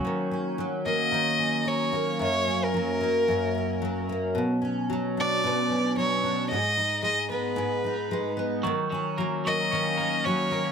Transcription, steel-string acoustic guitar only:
X:1
M:4/4
L:1/8
Q:"Swing 16ths" 1/4=112
K:D#m
V:1 name="Steel-string acoustic guitar"
D, C F, A, D, C F, A, | F,, C F, A, F,, C F, A, | B,, C F, =D B,, C F, D | G,, D G, B, G,, D G, B, |
D, C F, A, D, C F, A, |]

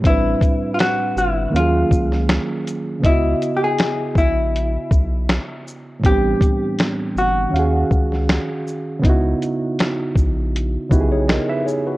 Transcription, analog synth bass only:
X:1
M:4/4
L:1/16
Q:"Swing 16ths" 1/4=80
K:D#phr
V:1 name="Analog synth bass" clef=bass
=A,,,2 z4 =G,,,2 D,,2 C,,3 z3 | C,,2 z4 A,,,4 B,,,3 z3 | =A,,,2 z4 =G,,,2 D,,2 C,,3 z3 | C,,2 z4 A,,,4 B,,,3 z3 |]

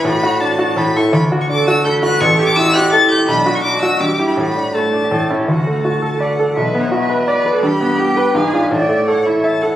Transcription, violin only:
X:1
M:3/4
L:1/16
Q:1/4=166
K:D
V:1 name="Violin"
b4 a4 b2 c'2 | b3 c' d'2 e'2 g'2 f'2 | c'3 d' e'2 f'2 a'2 g'2 | b3 c' d'2 e'2 d'3 b |
b4 a6 z2 | f4 a4 f4 | e8 d4 | b4 g4 ^e4 |
e4 f2 e2 a2 f2 |]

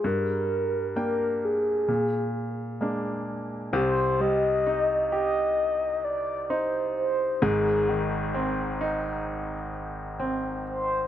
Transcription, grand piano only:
X:1
M:4/4
L:1/8
Q:1/4=65
K:Cm
V:1 name="Grand piano"
G,,2 [B,Dg]2 B,,2 [A,B,D]2 | [C,,C,] G, E G3 E2 | [A,,,A,,] E, C E3 C2 |]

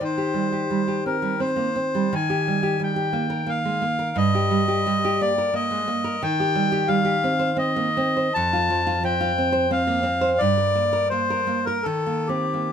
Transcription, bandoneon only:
X:1
M:3/4
L:1/16
Q:1/4=88
K:Eb
V:1 name="Bandoneon"
c6 B2 c4 | a4 g4 f4 | e6 d2 e4 | [K:Cdor] g4 f4 e4 |
a4 g4 f4 | d4 c3 B A2 G2 |]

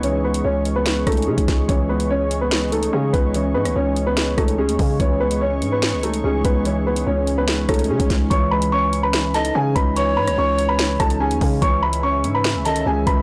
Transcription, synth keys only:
X:1
M:4/4
L:1/8
Q:1/4=145
K:C#m
V:1 name="Synth keys" clef=bass
[E,G,CD] G, C3 D C G, | E, G, C3 D C G, | E, G, C3 D C G, | E, G, C3 D C G, |
E, G, C3 D C G, | E, G, C3 D C G, | E, G, C3 D C G, | E, G, C3 D, C G, |]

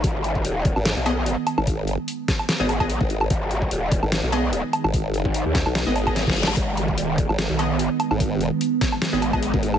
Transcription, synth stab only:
X:1
M:4/4
L:1/16
Q:"Swing 16ths" 1/4=147
K:G#m
V:1 name="Synth stab"
z8 z2 [B,Gd] z4 z | z8 z [B,Gd] z [B,Gd] z4 | z8 z2 [B,Gd] z4 z | z8 z [B,Gd] z [B,Gd] z4 |
z8 z2 [B,Gd] z4 z | z8 z [B,Gd] z [B,Gd] z4 |]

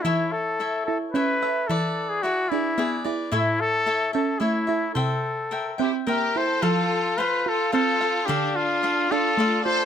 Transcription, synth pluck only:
X:1
M:3/4
L:1/8
Q:1/4=110
K:A
V:1 name="Synth pluck"
E, z2 E C e | E, z2 D B, E | A,, z2 C A, E | =C, z2 =C _B, E |
[K:Flyd] F, z2 F C f | D, z2 D A, F |]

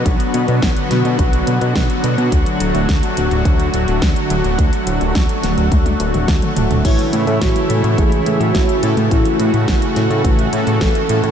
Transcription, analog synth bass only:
X:1
M:4/4
L:1/16
Q:1/4=106
K:A
V:1 name="Analog synth bass" clef=bass
B,,, z B,, B,, B,,, z B,, B,, B,,,2 B,, B,, B,,, z B,, B,, | D,, z D,,, D,,, D,, z D,,, D,,, D,,2 D,,, D,,, D,, z D,,, D,,, | D,, z D,,, D,,, D,, z D,,, D,,, D,,2 D,,, D,,, D,, z D,,, D,,, | A,,, z A,, A,, A,,, z A,, A,, A,,,2 A,, A,, A,,, z A,, A,, |
A,,, z A,, A,, A,,, z A,, A,, A,,,2 A,, A,, A,,, z A,, A,, |]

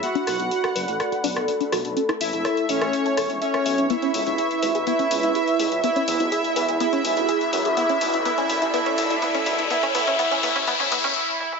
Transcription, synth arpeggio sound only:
X:1
M:4/4
L:1/16
Q:1/4=124
K:Bdor
V:1 name="Synth arpeggio sound"
B, D z F A z B A z F D z B, D F z | C E z A c z e c z A A z e e e C | B, C z E G z B G B, C z E G z B G | B, C z E G z B G B, C z E G z B G |
B, C z E B, C z E B, C z E B, C z E | B, C B, C B, C B, C B, C B, C z4 |]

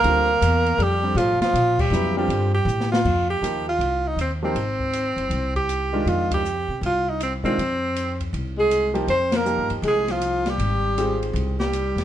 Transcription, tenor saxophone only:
X:1
M:4/4
L:1/8
Q:"Swing" 1/4=159
K:Gdor
V:1 name="Tenor saxophone" clef=bass
B,4 G,2 F, F,- | F, G,2 G,3 z2 | [K:Fdor] z8 | z8 |
z8 | z4 z A,2 z | C B,2 z A, F,2 G,- | G,3 z2 G,3 |]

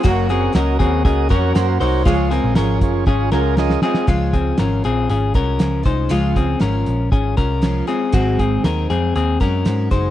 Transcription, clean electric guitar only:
X:1
M:4/4
L:1/8
Q:1/4=118
K:Db
V:1 name="Clean electric guitar"
[B,G] [CA] [DB] [CA] [DA] [DB]2 [Ec] | [A,F] [CA] [DB]2 [DA] [DB]2 [CA] | [A,F] [CA] [DB] [CA] [DA] [DB]2 [Ec] | [A,F] [CA] [DB]2 [DA] [DB]2 [CA] |
[CG] [CA] [EB] [CA] [CA] [DB]2 [Ec] |]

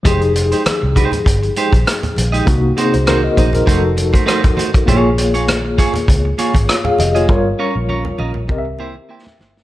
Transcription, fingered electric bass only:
X:1
M:4/4
L:1/16
Q:"Swing 16ths" 1/4=100
K:Fm
V:1 name="Fingered electric bass" clef=bass
F,,,4 z C,,2 z G,,,2 z B,,, z2 B,,,2 | C,,2 z C,,3 B,,,2 F,,,4 z4 | B,,,6- B,,, z D,,2 z A,,, z2 F,,,2 | G,,,2 z B,,,3 B,,,2 C,,4 z2 G,,,2 |]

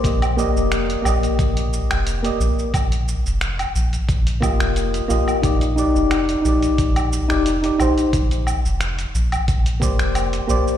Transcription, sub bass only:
X:1
M:4/4
L:1/16
Q:"Swing 16ths" 1/4=89
K:Fmix
V:1 name="Sub bass" clef=bass
B,,,2 z F,,,2 z B,,, z B,,,2 z F,,,2 z B,,, z | B,,,2 z F,,,2 z B,,, z B,,,2 z F,,,2 z B,,, z | B,,,2 z F,,,2 z B,,, z B,,,2 z F,,,2 z B,,, z | B,,,2 z F,,,2 z B,,, z B,,,2 z F,,,2 z B,,, z |]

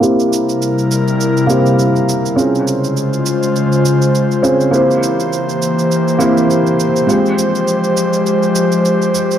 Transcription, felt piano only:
X:1
M:4/4
L:1/8
Q:"Swing 16ths" 1/4=102
K:none
V:1 name="Felt piano"
[_B,CEGc]4- [B,CEGc] [B,CEGc]3 | [C_DF_Ac]6- [CDFAc] [CDFAc] | [_B,CEGc]4- [B,CEGc] [B,CEGc]3 | [_A,CFGc]6- [A,CFGc] z |]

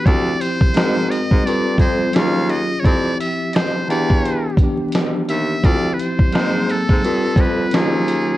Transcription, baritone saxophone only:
X:1
M:4/4
L:1/16
Q:"Swing 16ths" 1/4=86
K:Ephr
V:1 name="Baritone saxophone" clef=bass
D,,2 z2 ^G,,3 G,, =G,,2 F,,2 _E,,4 | F,,2 z4 E,,4 z4 _E,,2 | D,,2 z2 ^G,,3 G,, =G,,2 F,,2 _E,,4 |]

